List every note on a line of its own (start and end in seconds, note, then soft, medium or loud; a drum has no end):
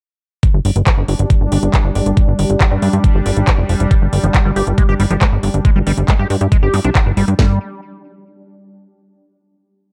0.43 7.43 G3 medium
0.43 7.43 D4 medium
0.43 kick loud
0.43 closed hi-hat medium
0.54 0.60 G1 medium
0.65 0.71 G1 loud
0.65 open hi-hat loud
0.76 0.82 G1 medium
0.76 closed hi-hat medium
0.87 kick loud
0.87 clap loud
0.87 closed hi-hat medium
0.97 1.04 G1 medium
1.08 1.15 G1 loud
1.08 open hi-hat medium
1.19 1.26 G1 medium
1.19 closed hi-hat medium
1.30 kick loud
1.30 closed hi-hat medium
1.41 1.47 G1 medium
1.52 1.58 G1 loud
1.52 open hi-hat loud
1.63 1.69 G1 medium
1.63 closed hi-hat medium
1.74 kick loud
1.74 clap loud
1.74 closed hi-hat medium
1.84 1.91 G1 medium
1.95 2.02 G1 loud
1.95 open hi-hat medium
2.06 2.13 G1 medium
2.06 closed hi-hat medium
2.17 kick loud
2.17 closed hi-hat medium
2.28 2.34 G1 medium
2.39 2.45 G1 loud
2.39 open hi-hat loud
2.50 2.56 G1 medium
2.50 closed hi-hat medium
2.61 kick loud
2.61 clap loud
2.61 closed hi-hat medium
2.71 2.78 G2 medium
2.82 2.89 G2 loud
2.82 open hi-hat medium
2.93 3.00 G2 medium
2.93 closed hi-hat medium
3.04 kick loud
3.04 closed hi-hat medium
3.15 3.21 G1 medium
3.26 3.32 G1 loud
3.26 open hi-hat loud
3.37 3.43 G#1 medium
3.37 closed hi-hat medium
3.47 kick loud
3.47 clap loud
3.47 closed hi-hat medium
3.58 3.65 F1 medium
3.69 3.76 F1 loud
3.69 open hi-hat medium
3.80 3.86 F1 medium
3.80 closed hi-hat medium
3.91 3.94 G3 loud
3.91 kick loud
3.91 closed hi-hat medium
4.02 4.08 G1 medium
4.13 4.19 G1 loud
4.13 open hi-hat loud
4.24 4.30 G1 medium
4.24 4.27 F3 medium
4.24 closed hi-hat medium
4.34 kick loud
4.34 clap loud
4.34 closed hi-hat medium
4.45 4.52 G1 medium
4.45 4.51 G3 medium
4.56 4.63 G1 loud
4.56 4.65 G4 medium
4.56 open hi-hat loud
4.67 4.73 G1 medium
4.67 closed hi-hat medium
4.78 4.84 G#3 medium
4.78 kick loud
4.78 closed hi-hat medium
4.89 4.95 G1 medium
4.89 4.94 G4 loud
5.00 5.06 G1 loud
5.00 5.03 G3 medium
5.00 open hi-hat loud
5.11 5.17 G1 medium
5.11 5.14 F3 medium
5.11 closed hi-hat medium
5.21 5.27 G#3 loud
5.21 kick loud
5.21 clap loud
5.21 closed hi-hat medium
5.32 5.39 G1 medium
5.43 5.50 G1 loud
5.43 open hi-hat loud
5.54 5.60 G1 medium
5.54 closed hi-hat medium
5.65 5.71 G#3 medium
5.65 kick loud
5.65 closed hi-hat medium
5.76 5.82 G1 medium
5.76 5.79 G3 medium
5.87 5.93 G1 loud
5.87 5.92 G3 medium
5.87 open hi-hat loud
5.97 6.04 G1 medium
5.97 closed hi-hat medium
6.08 6.14 G#3 loud
6.08 kick loud
6.08 clap loud
6.08 closed hi-hat medium
6.19 6.26 G2 medium
6.19 6.28 G4 medium
6.30 6.36 G2 loud
6.30 open hi-hat loud
6.41 6.47 G2 medium
6.41 closed hi-hat medium
6.52 6.57 G#3 medium
6.52 kick loud
6.52 closed hi-hat medium
6.63 6.69 G1 medium
6.63 6.75 G4 medium
6.74 6.80 G2 loud
6.74 6.77 G3 loud
6.74 open hi-hat loud
6.84 6.91 C2 medium
6.84 6.90 D4 medium
6.84 closed hi-hat medium
6.95 7.01 F3 medium
6.95 kick loud
6.95 clap loud
6.95 closed hi-hat medium
7.06 7.13 G1 medium
7.17 7.23 G1 loud
7.17 7.26 G3 medium
7.17 open hi-hat medium
7.28 7.34 G2 medium
7.28 closed hi-hat medium
7.39 7.59 G1 loud
7.39 7.59 G3 medium
7.39 kick loud
7.39 snare loud